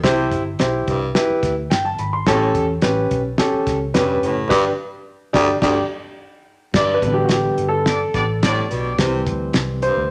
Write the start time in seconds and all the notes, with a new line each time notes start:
0.03 C2 C3 E4 G4 C5, kick, snare, closed hi-hat
0.32 G1, kick, closed hi-hat
0.59 B1 E4 G4 C5, snare, closed hi-hat
0.88 C2 G2, kick, closed hi-hat
1.15 E4 G4 B4, snare, closed hi-hat
1.29 muted fingered electric bass stroke
1.43 D2, kick, snare, closed hi-hat
1.70 G1 G5, snare, closed hi-hat
1.85 A5
1.98 G#1 B5, closed hi-hat
2.13 C6
2.26 A1 A2 C#4 G4 A4, kick, snare, closed hi-hat
2.55 E2, kick, closed hi-hat
2.81 A1 C#4 G4 B4, snare, closed hi-hat
3.11 B1, kick, closed hi-hat
3.38 C#4 G4 A4, snare, closed hi-hat
3.53 muted fingered electric bass stroke
3.67 C#2, kick, snare, closed hi-hat
3.94 F1 G2 C#4 G4 B4, snare, closed hi-hat
4.22 F#1 A2, closed hi-hat
4.49 G1 G2 D4 G4 B4, kick, snare, crash
5.33 G1 D2 D4 G4 D5, kick, snare
5.62 G1 D2 D4 G4, kick, snare, crash
6.74 G1 G2 D5, kick, snare, crash
6.94 B4
7.02 A1 D3 G3 B3, kick, closed hi-hat
7.13 G4
7.25 F#4
7.29 G4, snare, closed hi-hat
7.58 G1, closed hi-hat
7.68 A4
7.86 B3 D4 G4 D5, snare, closed hi-hat
8.14 A1 B3 D4 G4 D5, kick, snare, closed hi-hat
8.43 A2 B3 D4 G4 D5, snare, closed hi-hat
8.70 B1 B2, closed hi-hat
8.98 C2 C3 E3 G3 C4, kick, snare, closed hi-hat
9.26 D2, kick, closed hi-hat
9.53 C2, snare, closed hi-hat
9.82 G2 C5, closed hi-hat
9.97 D2